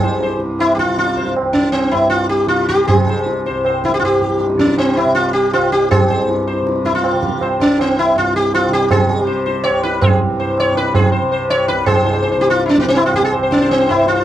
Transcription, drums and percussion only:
0.02 tabla te medium
0.20 tabla te medium
0.40 tabla te medium
0.59 tabla na medium
0.78 tabla ke medium
0.98 tabla te medium
1.08 tabla te medium
1.18 tabla ke medium
1.27 tabla te medium
1.36 tabla na medium
1.56 tabla ke medium
1.74 tabla na medium
1.93 tabla na medium
2.12 tabla te medium
2.32 tabla te medium
2.51 tabla te medium
2.60 tabla te medium
2.70 tabla ke medium
2.80 tabla te medium
2.89 tabla na medium
2.89 tabla ge medium
3.08 tabla te medium
3.26 tabla te medium
3.46 tabla te medium
3.65 tabla na medium
3.84 tabla ke medium
4.02 tabla na medium
4.22 tabla ke medium
4.40 tabla te medium
4.50 tabla te medium
4.59 tabla ke medium
4.69 tabla te medium
4.78 tabla na medium
4.97 tabla na medium
5.16 tabla te medium
5.35 tabla te medium
5.54 tabla na medium
5.73 tabla te medium
5.91 tabla na loud
5.91 tabla ge medium
6.10 tabla te medium
6.29 tabla te medium
6.48 tabla te medium
6.67 tabla te medium
6.76 tabla te soft
6.85 tabla ke medium
6.94 tabla te medium
7.04 tabla na medium
7.23 tabla ke medium
7.41 tabla na medium
7.60 tabla ke medium
7.79 tabla na medium
7.98 tabla na medium
8.16 tabla te medium
8.35 tabla te medium
8.54 tabla na medium
8.72 tabla te medium
8.91 tabla na loud
8.91 tabla ge medium
9.09 tabla te medium
9.27 tabla te medium
9.46 tabla te medium
9.65 tabla na medium
9.84 tabla te medium
10.02 tabla na loud
10.02 tabla ge medium
10.58 tabla na medium
10.76 tabla te medium
10.95 tabla na medium
10.95 tabla ge medium
11.50 tabla na medium
11.68 tabla te medium
11.86 tabla na loud
11.86 tabla ge loud
12.05 tabla te medium
12.23 tabla te medium
12.41 tabla te medium
12.60 tabla te medium
12.69 tabla te medium
12.78 tabla ke medium
12.87 tabla te medium
12.96 tabla na medium
13.14 tabla ke medium
13.33 tabla na medium
13.51 tabla ke medium
13.69 tabla na medium
13.88 tabla na medium
14.06 tabla te medium

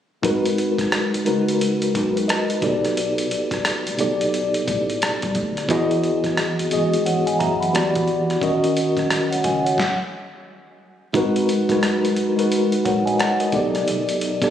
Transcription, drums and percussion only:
0.23 kick medium
0.23 closed hi-hat medium
0.46 closed hi-hat soft
0.58 closed hi-hat soft
0.79 kick medium
0.79 cross-stick soft
0.79 closed hi-hat soft
0.92 cross-stick loud
0.92 closed hi-hat medium
1.14 closed hi-hat soft
1.26 closed hi-hat medium
1.48 closed hi-hat soft
1.61 closed hi-hat medium
1.82 closed hi-hat soft
1.95 kick medium
1.95 closed hi-hat medium
2.17 closed hi-hat soft
2.29 cross-stick medium
2.29 closed hi-hat medium
2.50 closed hi-hat soft
2.62 kick medium
2.62 closed hi-hat soft
2.85 cross-stick soft
2.85 closed hi-hat soft
2.97 closed hi-hat medium
3.18 closed hi-hat soft
3.31 closed hi-hat soft
3.51 kick medium
3.51 cross-stick soft
3.51 closed hi-hat soft
3.65 cross-stick medium
3.65 closed hi-hat medium
3.87 closed hi-hat soft
3.99 closed hi-hat medium
4.21 closed hi-hat soft
4.34 closed hi-hat medium
4.54 closed hi-hat soft
4.68 kick medium
4.68 closed hi-hat medium
4.90 closed hi-hat soft
5.02 cross-stick medium
5.02 closed hi-hat medium
5.22 kick medium
5.22 closed hi-hat soft
5.35 kick medium
5.35 closed hi-hat soft
5.57 cross-stick soft
5.57 closed hi-hat soft
5.69 kick loud
5.69 closed hi-hat medium
5.91 closed hi-hat soft
6.04 closed hi-hat medium
6.24 kick medium
6.24 cross-stick soft
6.24 closed hi-hat soft
6.37 cross-stick loud
6.37 closed hi-hat medium
6.59 closed hi-hat soft
6.71 closed hi-hat medium
6.94 closed hi-hat soft
7.06 closed hi-hat medium
7.27 closed hi-hat soft
7.40 kick medium
7.40 closed hi-hat soft
7.63 closed hi-hat soft
7.75 cross-stick medium
7.75 closed hi-hat medium
7.95 kick medium
7.95 closed hi-hat soft
8.08 closed hi-hat soft
8.30 cross-stick soft
8.30 closed hi-hat soft
8.42 kick medium
8.42 closed hi-hat medium
8.64 closed hi-hat soft
8.77 closed hi-hat medium
8.97 kick medium
8.97 cross-stick soft
8.97 closed hi-hat soft
9.10 cross-stick loud
9.10 closed hi-hat medium
9.33 closed hi-hat soft
9.44 kick medium
9.44 closed hi-hat medium
9.66 closed hi-hat soft
9.78 kick medium
9.78 snare medium
11.14 kick loud
11.14 closed hi-hat medium
11.36 closed hi-hat medium
11.49 closed hi-hat medium
11.69 kick medium
11.69 cross-stick soft
11.69 closed hi-hat soft
11.83 cross-stick loud
11.83 closed hi-hat medium
12.05 closed hi-hat soft
12.16 closed hi-hat medium
12.39 closed hi-hat soft
12.52 closed hi-hat medium
12.72 closed hi-hat soft
12.85 kick medium
12.85 closed hi-hat medium
13.07 closed hi-hat soft
13.20 cross-stick medium
13.20 closed hi-hat medium
13.40 closed hi-hat soft
13.52 kick loud
13.52 closed hi-hat soft
13.75 cross-stick soft
13.75 closed hi-hat soft
13.88 closed hi-hat medium
14.09 closed hi-hat medium
14.21 closed hi-hat medium
14.42 kick medium
14.42 cross-stick soft
14.42 closed hi-hat soft

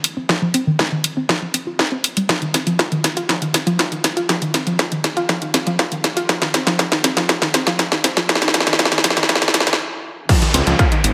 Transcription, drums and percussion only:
0.04 open hi-hat loud
0.29 kick loud
0.29 snare medium
0.54 open hi-hat loud
0.79 kick loud
0.79 snare medium
1.04 open hi-hat loud
1.29 kick loud
1.29 snare medium
1.54 open hi-hat loud
1.79 kick loud
1.79 snare medium
2.04 open hi-hat loud
2.17 open hi-hat medium
2.29 kick loud
2.29 snare medium
2.29 closed hi-hat medium
2.42 closed hi-hat soft
2.54 snare medium
2.54 open hi-hat loud
2.67 closed hi-hat soft
2.79 kick loud
2.79 snare medium
2.79 closed hi-hat medium
2.92 closed hi-hat soft
3.04 snare medium
3.04 open hi-hat loud
3.17 closed hi-hat soft
3.29 kick loud
3.29 snare medium
3.29 closed hi-hat medium
3.42 closed hi-hat soft
3.54 snare medium
3.54 open hi-hat loud
3.67 closed hi-hat soft
3.79 kick loud
3.79 snare medium
3.79 closed hi-hat medium
3.92 closed hi-hat soft
4.04 snare medium
4.04 open hi-hat loud
4.17 closed hi-hat soft
4.29 kick loud
4.29 snare medium
4.29 closed hi-hat medium
4.42 closed hi-hat soft
4.54 snare medium
4.54 open hi-hat loud
4.67 closed hi-hat soft
4.79 kick loud
4.79 snare medium
4.79 closed hi-hat medium
4.92 closed hi-hat soft
5.04 snare medium
5.04 open hi-hat loud
5.17 closed hi-hat soft
5.29 kick loud
5.29 snare medium
5.29 closed hi-hat medium
5.42 closed hi-hat soft
5.54 snare medium
5.54 open hi-hat loud
5.67 closed hi-hat soft
5.79 kick loud
5.79 snare medium
5.79 closed hi-hat medium
5.92 closed hi-hat soft
6.04 snare medium
6.04 open hi-hat loud
6.17 open hi-hat medium
6.29 kick loud
6.29 snare medium
6.29 closed hi-hat medium
6.42 snare medium
6.42 closed hi-hat soft
6.54 snare medium
6.54 open hi-hat medium
6.67 snare medium
6.67 closed hi-hat soft
6.79 kick loud
6.79 snare medium
6.79 closed hi-hat medium
6.92 snare medium
6.92 closed hi-hat soft
7.04 snare loud
7.04 open hi-hat loud
7.17 snare medium
7.17 closed hi-hat soft
7.29 kick loud
7.29 snare loud
7.29 closed hi-hat medium
7.42 snare medium
7.42 closed hi-hat soft
7.54 snare loud
7.54 open hi-hat loud
7.67 snare medium
7.67 closed hi-hat soft
7.79 kick loud
7.79 snare loud
7.79 closed hi-hat medium
7.92 snare medium
7.92 closed hi-hat soft
8.04 snare loud
8.04 open hi-hat loud
8.17 snare medium
8.17 closed hi-hat soft
8.29 kick loud
8.29 snare loud
8.29 closed hi-hat medium
8.35 snare medium
8.42 snare medium
8.42 closed hi-hat soft
8.48 snare medium
8.54 snare loud
8.54 open hi-hat loud
8.60 snare medium
8.67 snare medium
8.67 closed hi-hat soft
8.73 snare medium
8.79 kick loud
8.79 snare loud
8.79 closed hi-hat medium
8.85 snare medium
8.92 snare medium
8.92 closed hi-hat soft
8.98 snare medium
9.04 snare loud
9.04 open hi-hat loud
9.10 snare medium
9.17 snare medium
9.17 closed hi-hat soft
9.23 snare medium
9.29 kick loud
9.29 snare loud
9.29 closed hi-hat medium
9.35 snare medium
9.42 snare loud
9.42 closed hi-hat soft
9.48 snare medium
9.54 snare loud
9.54 open hi-hat loud
9.60 snare loud
9.67 snare medium
9.67 closed hi-hat soft
9.73 snare loud
10.29 kick loud
10.29 closed hi-hat medium
10.29 crash loud
10.42 closed hi-hat soft
10.54 open hi-hat loud
10.67 closed hi-hat soft
10.79 kick loud
10.79 closed hi-hat medium
10.92 closed hi-hat soft
11.04 open hi-hat loud

